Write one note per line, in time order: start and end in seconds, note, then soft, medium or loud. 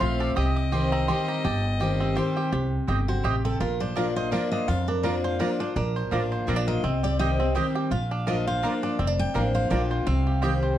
0.00 0.31 A#1 medium
0.00 0.35 F3 medium
0.00 0.35 A3 medium
0.00 0.92 C4 medium
0.00 0.36 C4 medium
0.00 0.37 F4 medium
0.00 0.36 F4 loud
0.00 1.25 C5 medium
0.00 0.33 F5 loud
0.00 0.20 C6 medium
0.20 0.36 A4 medium
0.20 0.36 D6 loud
0.36 1.09 C2 medium
0.36 1.06 C3 medium
0.36 0.72 G4 medium
0.36 2.18 D#5 loud
0.36 0.56 D#6 loud
0.56 0.72 D6 loud
0.72 1.07 D#3 medium
0.72 1.07 G3 medium
0.72 1.08 C4 loud
0.72 1.08 G4 medium
0.72 0.92 C6 medium
0.92 2.00 C4 medium
0.92 1.08 A#5 loud
1.08 1.43 D#3 medium
1.08 1.43 G3 loud
1.08 1.44 C4 medium
1.08 1.27 G4 medium
1.08 1.44 G4 medium
1.08 1.28 C6 loud
1.28 1.43 G4 medium
1.28 1.44 A#5 loud
1.45 2.17 G1 medium
1.45 2.13 G2 medium
1.45 1.79 G4 medium
1.45 1.97 A5 medium
1.80 2.14 D#3 medium
1.80 2.15 G3 medium
1.80 2.16 C4 loud
1.80 2.15 G4 medium
1.80 2.16 G4 loud
2.00 2.49 C4 medium
2.15 2.50 D#3 medium
2.15 2.51 G3 medium
2.15 2.51 C4 medium
2.15 2.35 G4 medium
2.15 2.52 G4 loud
2.15 2.52 C5 medium
2.37 2.51 G4 medium
2.52 2.77 C2 loud
2.52 3.21 C3 medium
2.52 2.87 G4 medium
2.87 3.19 G1 medium
2.87 3.23 D3 medium
2.87 2.98 C4 medium
2.87 2.98 G4 loud
2.87 3.24 G4 medium
2.87 2.98 D#5 loud
2.87 2.99 G5 loud
3.08 3.25 F#4 medium
3.08 3.57 C5 medium
3.23 3.55 A1 medium
3.23 3.59 C3 medium
3.23 3.34 C4 medium
3.23 3.34 G4 medium
3.23 3.44 G4 medium
3.23 3.61 G4 medium
3.23 3.34 D#5 loud
3.23 3.35 G5 loud
3.45 3.61 C4 medium
3.45 3.60 A4 medium
3.60 4.33 A#1 medium
3.60 4.29 A#2 medium
3.60 4.68 F4 medium
3.60 3.80 A#4 medium
3.80 4.52 D4 medium
3.80 3.96 C5 medium
3.95 4.30 F3 medium
3.95 4.06 A#3 loud
3.95 4.31 A#3 medium
3.95 4.31 D4 medium
3.95 4.06 F4 loud
3.95 4.31 F4 medium
3.95 4.32 A#4 medium
3.95 4.06 D5 medium
3.95 4.16 D5 medium
3.95 4.06 A#5 loud
4.16 4.65 C5 medium
4.16 4.32 D#5 loud
4.31 4.66 F3 medium
4.31 4.42 A#3 loud
4.31 4.67 A#3 medium
4.31 4.67 D4 loud
4.31 4.42 F4 medium
4.31 4.68 F4 loud
4.31 5.04 A#4 medium
4.31 4.51 D5 medium
4.31 4.42 D5 loud
4.31 4.42 A#5 loud
4.52 4.87 D4 medium
4.52 4.68 D#5 medium
4.68 5.37 F2 medium
4.68 5.41 F2 medium
4.68 5.20 F4 medium
4.68 4.87 F5 medium
4.88 5.37 D4 medium
4.88 5.03 A#4 medium
5.03 5.38 F3 medium
5.03 5.14 A#3 medium
5.03 5.38 A#3 medium
5.03 5.39 D4 loud
5.03 5.14 F4 loud
5.03 5.39 F4 medium
5.03 5.39 A#4 medium
5.03 5.23 D5 medium
5.03 5.14 D5 loud
5.03 5.14 A#5 loud
5.24 5.73 C5 medium
5.24 5.39 F5 medium
5.39 5.59 F3 medium
5.39 5.50 A#3 loud
5.39 5.59 A#3 medium
5.39 5.60 D4 loud
5.39 5.50 F4 medium
5.39 5.58 F4 loud
5.39 5.92 A#4 medium
5.39 5.59 D5 medium
5.39 5.50 D5 loud
5.39 5.50 A#5 loud
5.59 5.75 D4 medium
5.59 5.76 D4 medium
5.59 5.75 F4 medium
5.59 5.76 C5 medium
5.76 6.00 A#1 loud
5.76 6.45 A#2 medium
5.76 6.11 D4 medium
5.76 6.44 A#4 medium
5.96 6.31 C5 medium
6.11 6.42 A1 medium
6.11 6.46 F3 medium
6.11 6.21 A#3 loud
6.11 6.46 A#3 medium
6.11 6.48 D4 medium
6.11 6.47 D4 medium
6.11 6.22 F4 loud
6.11 6.47 F4 medium
6.11 6.22 D5 loud
6.11 6.22 A#5 loud
6.32 6.80 C5 medium
6.47 6.78 A#1 medium
6.47 6.82 F3 medium
6.47 6.58 A#3 medium
6.47 6.82 A#3 medium
6.47 6.56 C4 medium
6.47 6.82 D4 medium
6.47 6.58 F4 loud
6.47 6.83 F4 medium
6.47 6.58 D5 loud
6.47 6.58 A#5 loud
6.56 6.83 D4 medium
6.67 6.84 A#4 medium
6.67 7.01 D#5 loud
6.84 7.56 C2 medium
6.84 7.52 C3 medium
6.84 7.36 C4 medium
7.03 7.18 G4 medium
7.03 7.19 D5 loud
7.19 7.38 D#3 medium
7.19 7.39 G3 medium
7.19 7.29 C4 loud
7.19 7.39 C4 medium
7.19 7.54 G4 medium
7.19 7.30 G4 medium
7.19 7.38 G4 medium
7.19 7.53 D#5 loud
7.19 7.30 D#5 loud
7.19 7.30 G5 loud
7.39 7.88 C4 medium
7.39 7.55 C4 medium
7.39 7.55 G4 medium
7.55 7.89 D#3 loud
7.55 7.90 G3 medium
7.55 7.65 C4 loud
7.55 7.90 C4 loud
7.55 7.74 G4 medium
7.55 7.65 G4 medium
7.55 7.91 G4 loud
7.55 8.08 C5 medium
7.55 7.66 D#5 loud
7.55 7.66 G5 loud
7.75 7.91 G4 medium
7.91 8.64 A#1 medium
7.91 8.60 A#2 medium
7.91 8.43 F4 medium
7.91 8.25 F5 medium
8.11 8.60 D4 medium
8.27 8.61 F3 medium
8.27 8.37 A#3 medium
8.27 8.62 A#3 medium
8.27 8.62 D4 medium
8.27 8.37 F4 loud
8.27 8.63 F4 loud
8.27 8.62 A#4 medium
8.27 8.37 D5 medium
8.27 8.47 D#5 medium
8.27 8.37 A#5 loud
8.47 8.96 C5 medium
8.47 8.81 F5 medium
8.63 8.97 F3 medium
8.63 8.73 A#3 medium
8.63 8.98 A#3 medium
8.63 8.98 D4 loud
8.63 8.73 F4 medium
8.63 8.98 F4 loud
8.63 9.15 A#4 medium
8.63 8.73 D5 loud
8.63 8.74 A#5 loud
8.83 8.99 D4 medium
8.83 9.31 D5 medium
8.99 9.23 F1 medium
8.99 9.68 F2 medium
8.99 9.07 C4 medium
9.07 9.35 D4 medium
9.19 9.53 G5 loud
9.34 9.65 A1 medium
9.34 9.69 F3 medium
9.34 9.44 A#3 medium
9.34 9.69 A#3 medium
9.34 9.70 D4 loud
9.34 9.45 F4 loud
9.34 9.70 F4 medium
9.34 9.87 A#4 medium
9.34 9.45 D5 loud
9.34 9.45 A#5 loud
9.55 9.90 C5 medium
9.55 9.70 F5 medium
9.70 10.01 A#1 loud
9.70 10.05 F3 medium
9.70 9.80 A#3 loud
9.70 10.05 A#3 medium
9.70 10.06 D4 medium
9.70 9.81 F4 loud
9.70 10.06 F4 loud
9.70 9.81 D5 loud
9.70 10.04 G5 medium
9.70 9.81 A#5 loud
9.91 10.07 C5 medium
10.07 10.78 C2 loud
10.07 10.75 C3 loud
10.07 10.59 C4 medium
10.07 10.59 F5 medium
10.27 10.41 G4 medium
10.42 10.77 D#3 medium
10.42 10.77 G3 medium
10.42 10.52 C4 loud
10.42 10.77 C4 medium
10.42 10.52 G4 loud
10.42 10.78 G4 medium
10.42 10.78 G4 loud
10.42 10.53 D#5 medium
10.42 10.53 G5 loud
10.63 10.78 C5 medium